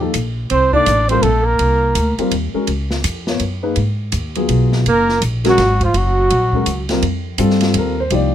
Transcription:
Already playing: D#2
0.01 F3 A#3 D#4 A4
0.14 A#1, hi-hat pedal, ride
0.50 C2 C4 C5, ride
0.73 A#3 D4 D#4 A4 D5, kick
0.86 A1, hi-hat pedal, ride
1.07 G3 C4 F4 C5, ride
1.12 A#4
1.20 A#1 A3 A4, ride
1.43 A#3 A#4
1.59 C2, ride
1.95 D2, hi-hat pedal, ride
2.18 G3 C4 F4 A#4, muted upright bass stroke, ride
2.31 D#2, ride
2.54 G#3 C#4 F#4 A#4, muted upright bass stroke
2.67 C#2, ride
2.91 snare
3.04 F2, hi-hat pedal, ride
3.27 B3 F4 A#4 C#5, snare
3.40 F#2, ride
3.63 A#3 D#4 G#4 B4
3.76 G#2, ride
4.12 D#2, hi-hat pedal, ride
4.35 F#3 B3 F4 G#4, ride
4.49 B1, ride
4.72 snare
4.86 F#1 A#3, ride
4.90 A#4
5.09 snare
5.21 A#1, hi-hat pedal, ride
5.44 F#3 G#3 C#4 F#4 A#4, snare, ride
5.49 F#4
5.58 G#1, snare, ride
5.81 F3 F4, kick, ride
5.94 F#1 F#3 F#4, ride
6.30 A#1, ride
6.53 G#3 C#4 F#4 A#4, kick
6.66 C#2, hi-hat pedal, ride
6.89 G3 C4 F4 A#4, snare, ride
7.02 F2, ride
7.38 G2 G3 C4 F4 A4, hi-hat pedal, ride
7.50 snare
7.61 snare, ride
7.74 D#2, ride
7.79 A#4
8.00 C5
8.10 C2 F3 A#3 D#4 G4, ride
8.14 D5

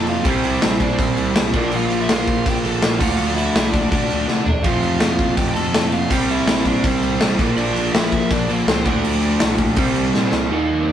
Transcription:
Already playing: F1 F2 C3 F3 A3 C4 F4
0.07 F4 F5, crash
0.25 C2 C3 G3 C4 E4 G4, kick, crash
0.29 G5
0.44 E4 E5, crash
0.62 A#1, snare, crash
0.78 C3 G3 C4 D4, kick, crash
0.82 D5
0.97 A#2 C4 C5, kick, crash
1.16 C2 C3 G3 C4 E4, crash
1.35 C2 C3 G3 C4 E4, snare, crash
1.52 A#1 A#2 D3 F3 A#3 D4 D5, kick, crash
1.71 A#1 F4 F5, crash
1.90 A#1, crash
2.02 E5
2.07 A#1 A#2 F3 A#3 F4, snare, crash
2.11 F5
2.28 A#1, kick, crash
2.45 A#1 A#2 D3 F3 A#3 D4 G4, kick, crash
2.50 G5
2.64 A#1 F3 A#3 D4 A4 A5, crash
2.68 A#2 D3
2.82 A#1, snare, crash
3.00 D2 D3 F3 A3 D4 F4 F5, kick, crash
3.18 D2 F4 F5, crash
3.36 E4 E5, crash
3.54 C2 D3 A3, snare, crash
3.59 D4
3.71 D4 D5, kick, crash
3.89 C3 D3 D4 D5, kick, crash
3.93 F3 A3 D4
4.09 D2 D3 F3 A3 D4, crash
4.26 C3, snare
4.45 E2 D4 D5, floor tom
4.63 F1 F2 C3 F3 A3 C4 F4 F5, kick, crash
4.81 F1, crash
5.00 F1 F4 F5, snare, crash
5.18 F1 F2 C3 F3, kick, crash
5.37 F1 G4 G5, kick, crash
5.49 G5
5.54 F1 F3 A3 C4 A4 A5, crash
5.58 F2 C3
5.72 F1 F2 C3 F3, snare, crash
5.76 A3 C4
5.92 F4 F5, crash
6.09 C2 C3 G3 C4 E4 G4 G5, kick, crash
6.29 E4 E5, crash
6.46 A#1, snare, crash
6.65 C3 G3 C4 D4 D5, kick, crash
6.83 A#2 C5, kick, crash
6.88 C4
7.02 C2 C3 G3 C4 E4, crash
7.20 A1 C3 G3 C4 E4, snare, crash
7.37 A#1 A#2 D3 F3 A#3 D4, kick, crash
7.56 A#1 D4 D5, crash
7.74 A#1, crash
7.92 A#1 A#2 F3 A#3 E4 E5, snare, crash
8.12 A#1, kick, crash
8.30 A#1 A#2 D3 F3 A#3 D4 D5, kick, crash
8.48 A#1 A#2 D3 F3 A#3 D4 A#4, crash
8.67 C#2 C4 C5, snare, crash
8.84 D2 D3 F3 A3 D4, kick, crash
8.88 D5
9.04 D2, crash
9.22 crash
9.39 C2 D3 A3 D4, snare, crash
9.58 kick, crash
9.76 C2 C3 G3 C4, kick, crash
9.80 E4
9.95 C2, crash
10.14 A#2, snare
10.30 C2 C3 G3 C4, snare
10.50 D#2 D#3 G3 A#3 D#4 A#4
10.68 D#2
10.81 C4 C5
10.86 D#2 D4 D5

